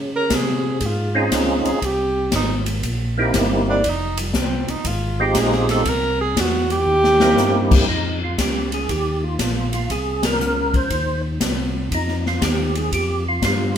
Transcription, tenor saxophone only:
0.16 A#4
0.35 G#4
0.86 F4
1.67 G#4
1.85 G4
2.36 D#4
3.70 D4
3.89 D#4
4.21 G3
4.38 C4
4.70 D#4
4.87 F4
5.21 G4
5.39 G#4
5.71 A4
5.89 A#4
6.21 G#4
6.40 F#4
6.72 G4

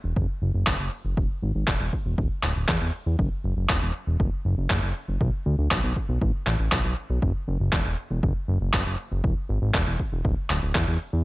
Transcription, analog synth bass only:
0.04 E1
0.16 F#1
0.42 F#1
0.54 F#1
0.67 F#1
0.79 F#1
1.05 F#1
1.17 E1
1.42 G#1
1.55 G#1
1.68 E1
1.80 E1
2.06 E1
2.18 D1
2.43 D1
2.56 D1
2.69 E2
2.81 E2
3.06 E2
3.19 F#1
3.44 F#1
3.57 F#1
3.69 E1
3.82 E1
4.07 E1
4.20 F#1
4.45 F#1
4.58 F#1
4.70 F#1
4.83 F#1
5.08 F#1
5.21 B1
5.46 D2
5.58 D2
5.71 B1
5.84 B1
6.09 B1
6.22 A1
6.47 A1
6.59 A1
6.72 B1
6.84 B1
7.10 B1
7.22 F#1
7.48 F#1
7.60 F#1
7.73 E1
7.85 E1
8.11 E1
8.23 F#1
8.48 F#1
8.61 F#1
8.74 F#1
8.86 F#1
9.12 F#1
9.24 E1
9.49 G#1
9.62 G#1
9.74 E1
9.87 E1
10.12 E1
10.25 D1
10.50 D1
10.63 D1
10.75 E2
10.88 E2
11.13 E2

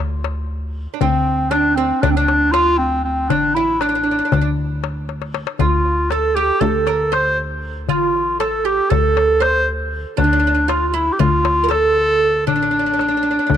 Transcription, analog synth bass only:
Already playing: D2
1.01 D2
2.03 D2
3.31 A1
4.32 D2
5.60 D2
6.62 D2
7.89 A1
8.91 D2
10.19 D2
11.20 D2
12.48 A1
13.50 D2

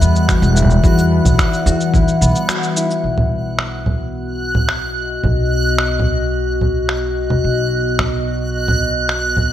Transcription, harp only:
Already playing: E3 A3 E4 F#4
0.01 B3
0.29 F#4
0.56 E4
0.83 E3 F#4
1.11 B3
1.39 E4
1.66 F#4
1.94 E4
2.21 B3
2.49 F#4
2.76 E4

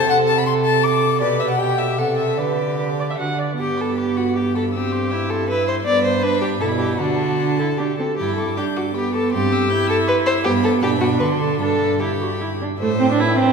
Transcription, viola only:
0.10 A4
0.47 A4
1.22 B4
1.60 G4
1.98 A4
2.38 B4
2.79 B4
3.00 D5
3.10 E5
3.18 F#5
3.39 D5
3.59 B3
4.74 C4
5.12 E4
5.49 E4
5.87 B3
6.24 D4
6.62 E4
7.01 D4
7.40 D4
7.60 E4
7.79 D4
7.99 C4
8.18 E4
8.57 D4
8.95 B3
9.33 C4
9.71 E4
10.45 B3
10.83 D4
11.60 D4
12.01 E4
12.21 F#4
12.41 E4
12.62 D4
12.81 A3
13.00 C4
13.11 D4
13.20 E4
13.39 C4

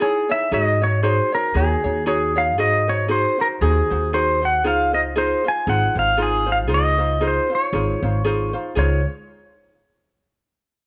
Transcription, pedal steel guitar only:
0.02 G#4
0.32 E5
0.54 D#5
0.84 C#5
1.03 C5
1.35 A#4
1.57 G#4
2.08 G#4
2.38 F5
2.60 D#5
2.89 C#5
3.11 C5
3.41 A#4
3.62 G#4
4.14 C5
4.45 F#5
4.67 F5
4.94 D#5
5.18 C5
5.48 G#5
5.69 F#5
5.99 F5
6.22 G#4
6.52 F5
6.74 D#5
7.28 C5
7.55 C#5
8.79 C#5

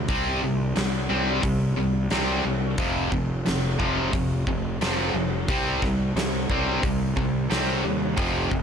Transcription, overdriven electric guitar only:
0.09 C3 G3 C4
0.43 C3 G3
0.76 C3 G3
1.09 C3 G3 C4
1.43 C3 G3
1.76 C3 G3
2.11 C3 G3 C4
2.45 C3 G3
2.78 F2 C3 F3
3.11 F2 C3
3.46 F2 C3
3.79 F2 C3 F3
4.13 F2 C3
4.48 F2 C3
4.81 F2 C3 F3
5.15 F2 C3
5.49 C3 G3 C4
5.83 C3 G3
6.17 C3 G3
6.50 C3 G3 C4
6.83 C3 G3
7.17 C3 G3
7.50 C3 G3 C4
7.84 C3 G3
8.17 F2 C3 F3
8.51 F2 C3

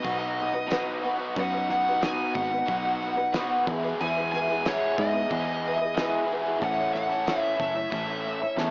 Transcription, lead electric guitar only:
Already playing: D#5
1.40 F#5
1.71 F#5
2.04 G#5
2.35 F#5
4.01 G#5
4.32 G#5
4.67 C#5
4.98 D#5
6.64 F#5
6.94 F#5
7.41 E5
7.61 E5

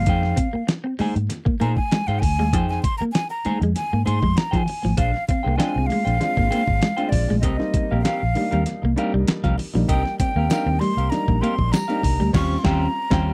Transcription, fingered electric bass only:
0.07 F2
0.54 muted fingered electric bass stroke
1.00 muted fingered electric bass stroke
1.16 G#2
1.47 muted fingered electric bass stroke
1.61 A#2
2.08 G#2
2.22 D2
2.39 D#2
2.53 F2
3.01 muted fingered electric bass stroke
3.46 muted fingered electric bass stroke
3.61 F2
3.93 G#2
4.07 G#2
4.23 F2
4.53 F3
4.84 G#1
4.98 A#1
5.46 C2
5.76 C2
6.06 A#1
6.37 G#1
6.68 G#1
7.12 A#1
7.31 A#1
7.43 C2
7.92 A#1
8.23 A#1
8.52 D#2
8.84 C2
9.14 C2
9.44 C2
9.75 A#1
9.89 C2
10.36 D#2
10.66 D#2
10.97 C2
11.28 A#1
11.59 A#1
12.04 C2
12.20 D2
12.34 D#2
12.65 D#2
13.12 D#2

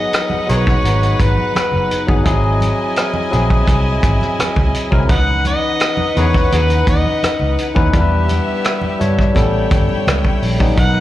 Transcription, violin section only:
Already playing: D#4 B4 F#5
2.26 E4 D#5 G#5
5.09 D#4 B4 F#5
7.94 B3 G4 E5
9.36 E4 C#5 G5
10.78 D#4 B4 F#5

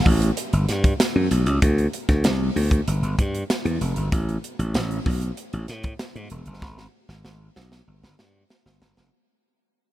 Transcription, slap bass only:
0.06 A1
0.53 G1
0.69 G2
1.16 F#2
1.31 B1
1.46 C#2
1.62 D2
2.09 D2
2.25 C2
2.56 D2
2.87 G1
3.02 G1
3.19 G2
3.65 E2
3.81 F1
3.97 G1
4.12 A1
4.59 A1
4.74 A1
5.06 B1
5.53 A1
5.69 A2
6.16 G#2
6.31 E1
6.46 F#1
6.62 G#1
7.09 G#1
7.25 G#1
7.56 B1
7.87 G1
8.03 G1
8.19 G2
8.66 G1
8.81 G1
8.97 F1

